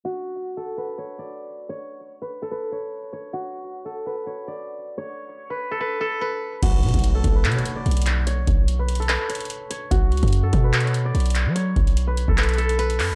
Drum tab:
CC |------------------------------------------------------------------------------------------------|------------------------------------------------------------------------------------------------|------------------------------------------------------------------------------------------------|------------------------------------------------------------------------------------------------|
HH |------------------------------------------------------------------------------------------------|------------------------------------------------------------------------------------------------|------------------------------------------------------------------------------------------------|------------------------------------------------------------------------------------------------|
CP |------------------------------------------------------------------------------------------------|------------------------------------------------------------------------------------------------|------------------------------------------------------------------------------------------------|------------------------------------------------------------------------------------------------|
BD |------------------------------------------------------------------------------------------------|------------------------------------------------------------------------------------------------|------------------------------------------------------------------------------------------------|------------------------------------------------------------------------------------------------|

CC |x-----------------------------------------------------------------------------------------------|------------------------------------------------------------------------------------------------|------------------------------------------------------------------------------------------------|------------------------------------------------------------------------------------------------|
HH |x-----------x--x--x--x--x-----------x-----------x---x---x---x-----------x--x--x--x--x-----------|x-----------x-----------x-----------x---x---x---x-----------x--x--x--x--x-----------x-----------|x-----------x--x--x--x--x-----------x-----------x---x---x---x-----------x--x--x--x--x-----------|x-----------x-----x-----x-----------x-----------x--x--x--x--x-----x-----x-----x-----o-----------|
CP |------------------------------------------------x-----------------------------------x-----------|------------------------------------------------x-----------------------------------------------|------------------------------------------------x-----------------------------------x-----------|------------------------------------------------x-----------------------------------x-----------|
BD |o-----------------o-----------------o-----------------------------------------------------------|------------o-----------------------------------------------------------------------------------|o-----------------o-----------------o-----------------------------------------------------------|------------o-----------------------------o-----------------------------------------------------|